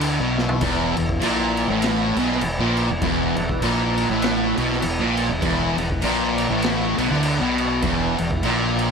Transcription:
Already playing: fingered electric bass D2, distorted electric guitar D3, synth drone E3 E4 B4
0.01 crash
0.19 fingered electric bass B1, distorted electric guitar B2
0.38 snare
0.49 floor tom
0.61 fingered electric bass E1, distorted electric guitar E2, kick, crash
0.97 fingered electric bass E1, distorted electric guitar E2, crash
1.09 kick
1.21 fingered electric bass A#1, distorted electric guitar A#2, crash
1.57 crash
1.69 fingered electric bass A1, distorted electric guitar A2
1.82 snare, crash
2.16 fingered electric bass B1, distorted electric guitar B2, crash
2.31 snare
2.41 fingered electric bass E1, distorted electric guitar E2, crash
2.58 fingered electric bass A#1, distorted electric guitar A#2
2.77 crash
2.89 fingered electric bass E1, distorted electric guitar E2
3.02 fingered electric bass E1, distorted electric guitar E2, kick, crash
3.37 fingered electric bass E1, distorted electric guitar E2, crash
3.49 kick
3.61 fingered electric bass A#1, distorted electric guitar A#2, crash
3.98 crash
4.09 fingered electric bass A1, distorted electric guitar A2
4.22 snare, crash
4.57 fingered electric bass B1, distorted electric guitar B2, crash
4.72 snare
4.82 fingered electric bass E1, distorted electric guitar E2, crash
4.99 fingered electric bass A#1, distorted electric guitar A#2
5.17 crash
5.29 fingered electric bass E1, distorted electric guitar E2
5.42 fingered electric bass E1, distorted electric guitar E2, kick, crash
5.77 fingered electric bass E1, distorted electric guitar E2, crash
5.90 kick
6.02 fingered electric bass A#1, distorted electric guitar A#2, crash
6.38 crash
6.50 fingered electric bass A1, distorted electric guitar A2
6.62 snare, crash
6.98 fingered electric bass B1, distorted electric guitar B2, crash
7.11 fingered electric bass D2, distorted electric guitar D3, snare
7.23 crash
7.41 fingered electric bass B1, distorted electric guitar B2
7.58 crash
7.82 fingered electric bass E1, distorted electric guitar E2, kick, crash
8.18 fingered electric bass E1, distorted electric guitar E2, crash
8.31 kick
8.43 fingered electric bass A#1, distorted electric guitar A#2, crash
8.79 crash

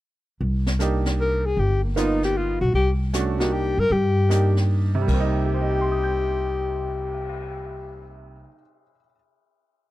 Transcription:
0.41 upright bass C2, brush sweep
0.67 snare
0.79 upright piano A#3 D4 D#4 G4, snare, hi-hat pedal
1.06 snare
1.21 alto saxophone A#4
1.46 alto saxophone G#4
1.57 upright bass G1, alto saxophone G4, brush sweep
1.84 alto saxophone A#3
1.96 upright piano A#3 B3 D#4 F4, alto saxophone D#4, snare, hi-hat pedal
2.23 alto saxophone G4, snare
2.37 alto saxophone F4
2.61 upright bass B1, alto saxophone F#4
2.73 upright bass C2, alto saxophone G4, brush sweep
3.13 upright piano A3 C#4 D4 F#4, snare, hi-hat pedal
3.39 upright piano A#3 D4 D#4 G4, alto saxophone F#4, snare
3.53 alto saxophone G4
3.77 upright bass G2, alto saxophone A#4
3.90 upright bass G2, alto saxophone G4, brush sweep
4.29 upright piano A#3 D4 D#4 G4, snare, hi-hat pedal
4.57 snare
4.95 upright piano C3
5.01 upright piano G3
5.07 upright bass C2, upright piano A#3, alto saxophone G4, kick, crash
5.14 upright piano C4
5.20 upright piano D#4
5.34 cymbal swell
5.46 upright piano G4
5.54 upright piano C5
5.62 upright piano D#5
5.70 upright piano G5
5.81 upright piano C6
5.92 upright piano D#6
6.03 upright piano G6

